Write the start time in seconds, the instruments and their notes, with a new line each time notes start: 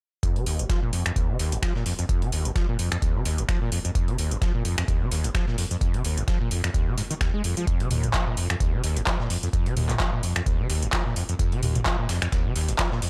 0.23 acid bass F2, kick, closed hi-hat, tambourine
0.36 acid bass C3, closed hi-hat
0.46 acid bass D#2, open hi-hat, tambourine
0.59 acid bass F1, closed hi-hat
0.70 acid bass F3, kick, snare, closed hi-hat, tambourine
0.83 acid bass A#2
0.93 acid bass F2, open hi-hat, tambourine
1.06 acid bass F2, finger snap, closed hi-hat
1.16 acid bass D#2, kick, closed hi-hat, tambourine
1.29 acid bass C3
1.39 acid bass D#2, snare, open hi-hat, tambourine
1.52 acid bass F1, closed hi-hat
1.63 acid bass F3, finger snap, kick, snare, closed hi-hat, tambourine
1.76 acid bass A#2, snare
1.86 acid bass F2, open hi-hat
1.99 acid bass F2, closed hi-hat
2.09 acid bass F2, kick, closed hi-hat, tambourine
2.22 acid bass C3, closed hi-hat
2.32 acid bass D#2, open hi-hat, tambourine
2.45 acid bass F1, closed hi-hat
2.56 acid bass F3, kick, snare, closed hi-hat, tambourine
2.69 acid bass A#2
2.79 acid bass F2, open hi-hat, tambourine
2.92 acid bass F2, finger snap, closed hi-hat
3.02 acid bass D#2, kick, closed hi-hat, tambourine
3.15 acid bass C3
3.25 acid bass D#2, snare, open hi-hat, tambourine
3.38 acid bass F1, closed hi-hat
3.49 acid bass F3, finger snap, kick, snare, closed hi-hat, tambourine
3.62 acid bass A#2
3.72 acid bass F2, open hi-hat, tambourine
3.85 acid bass F2, closed hi-hat
3.95 acid bass F2, kick, closed hi-hat, tambourine
4.08 acid bass C3, closed hi-hat
4.18 acid bass D#2, open hi-hat, tambourine
4.31 acid bass F1, closed hi-hat
4.42 acid bass F3, kick, snare, closed hi-hat, tambourine
4.55 acid bass A#2
4.65 acid bass F2, open hi-hat, tambourine
4.78 acid bass F2, finger snap, closed hi-hat
4.88 acid bass D#2, kick, closed hi-hat, tambourine
5.01 acid bass C3
5.11 acid bass D#2, snare, open hi-hat, tambourine
5.24 acid bass F1, closed hi-hat
5.35 acid bass F3, finger snap, kick, snare, closed hi-hat, tambourine
5.48 acid bass A#2, snare
5.58 acid bass F2, open hi-hat
5.71 acid bass F2, closed hi-hat
5.81 acid bass F2, kick, closed hi-hat, tambourine
5.94 acid bass C3, closed hi-hat
6.05 acid bass D#2, open hi-hat, tambourine
6.17 acid bass F1, closed hi-hat
6.28 acid bass F3, kick, snare, closed hi-hat, tambourine
6.41 acid bass A#2
6.51 acid bass F2, open hi-hat, tambourine
6.64 acid bass F2, finger snap, closed hi-hat
6.74 acid bass D#2, kick, closed hi-hat, tambourine
6.87 acid bass C3
6.98 acid bass G#2, snare, open hi-hat, tambourine
7.11 acid bass D#3, closed hi-hat
7.21 acid bass D#2, finger snap, kick, snare, closed hi-hat, tambourine
7.34 acid bass G#3
7.44 acid bass F2, open hi-hat, tambourine
7.57 acid bass F3, closed hi-hat
7.67 acid bass F2, kick, closed hi-hat, tambourine
7.80 acid bass C3, closed hi-hat
7.91 acid bass D#2, open hi-hat, mid tom, tambourine
8.03 acid bass F1, closed hi-hat, mid tom
8.14 acid bass F3, kick, snare, clap, closed hi-hat, tambourine
8.27 acid bass A#2
8.37 acid bass F2, open hi-hat, tambourine
8.50 acid bass F2, finger snap, closed hi-hat
8.60 acid bass D#2, kick, closed hi-hat, tambourine
8.73 acid bass C3
8.84 acid bass D#2, snare, open hi-hat, tambourine
8.96 acid bass F1, closed hi-hat
9.07 acid bass F3, finger snap, kick, snare, clap, closed hi-hat, tambourine
9.20 acid bass A#2, snare
9.30 acid bass F2, open hi-hat
9.43 acid bass F2, closed hi-hat
9.53 acid bass F2, kick, closed hi-hat, tambourine
9.66 acid bass C3, closed hi-hat
9.77 acid bass D#2, open hi-hat, mid tom, tambourine
9.89 acid bass F1, clap, closed hi-hat, mid tom
10.00 acid bass F3, kick, snare, clap, closed hi-hat, tambourine
10.13 acid bass A#2
10.23 acid bass F2, open hi-hat, tambourine
10.36 acid bass F2, finger snap, closed hi-hat
10.46 acid bass D#2, kick, closed hi-hat, tambourine
10.59 acid bass C3
10.70 acid bass D#2, snare, open hi-hat, tambourine
10.82 acid bass F1, closed hi-hat
10.93 acid bass F3, finger snap, kick, snare, clap, closed hi-hat, tambourine
11.06 acid bass A#2
11.16 acid bass F2, open hi-hat, tambourine
11.29 acid bass F2, closed hi-hat
11.39 acid bass F2, kick, closed hi-hat, tambourine
11.52 acid bass C3, closed hi-hat
11.63 acid bass D#2, open hi-hat, mid tom, tambourine
11.75 acid bass F1, closed hi-hat, mid tom
11.86 acid bass F3, kick, snare, clap, closed hi-hat, tambourine
11.99 acid bass A#2
12.09 acid bass F2, snare, open hi-hat, tambourine
12.22 acid bass F2, finger snap, closed hi-hat
12.32 acid bass D#2, kick, snare, closed hi-hat, tambourine
12.45 acid bass C3
12.56 acid bass D#2, snare, open hi-hat, tambourine
12.68 acid bass F1, closed hi-hat
12.79 acid bass F3, finger snap, kick, snare, clap, closed hi-hat, tambourine
12.92 acid bass A#2, snare
13.02 acid bass F2, open hi-hat